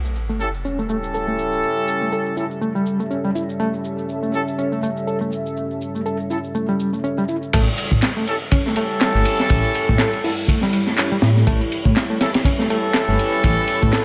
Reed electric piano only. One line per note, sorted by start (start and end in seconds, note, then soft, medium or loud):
0.30 0.38 A3 medium
0.65 0.78 C#4 medium
0.79 0.87 A3 medium
0.90 0.96 A3 medium
1.14 1.25 A4 medium
1.28 1.36 A3 medium
2.02 2.07 A3 medium
2.12 2.23 A4 medium
2.37 2.43 E4 medium
2.61 2.72 A3 medium
2.75 2.98 G3 medium
3.00 3.05 A3 medium
3.11 3.23 C#4 medium
3.25 3.29 G3 medium
3.35 3.42 E4 medium
3.60 3.73 A3 medium
4.23 4.31 A3 medium
4.58 4.71 C#4 loud
4.72 4.80 A3 medium
4.83 4.89 A3 medium
5.07 5.18 A4 medium
5.21 5.29 A3 medium
5.95 6.00 A3 medium
6.06 6.16 A4 medium
6.30 6.37 E4 medium
6.55 6.65 A3 medium
6.69 6.92 G3 medium
6.93 6.98 A3 medium
7.04 7.16 C#4 medium
7.18 7.23 G3 loud
7.29 7.35 E4 medium
7.53 7.67 A3 loud
8.16 8.25 A3 medium
8.52 8.65 C#4 loud
8.66 8.74 A3 medium
8.77 8.83 A3 medium
9.01 9.12 A4 medium
9.15 9.23 A3 medium
9.89 9.94 A3 medium
10.00 10.10 A4 medium
10.24 10.30 E4 medium
10.49 10.59 A3 medium
10.63 10.86 G3 loud
10.87 10.92 A3 medium
10.98 11.10 C#4 loud
11.12 11.17 G3 loud
11.23 11.29 E4 medium
11.47 11.60 A3 loud
12.10 12.18 A3 medium
12.45 12.58 C#4 loud
12.59 12.67 A3 medium
12.70 12.76 A3 medium
12.95 13.05 A4 medium
13.08 13.16 A3 medium
13.82 13.87 A3 medium
13.93 14.03 A4 medium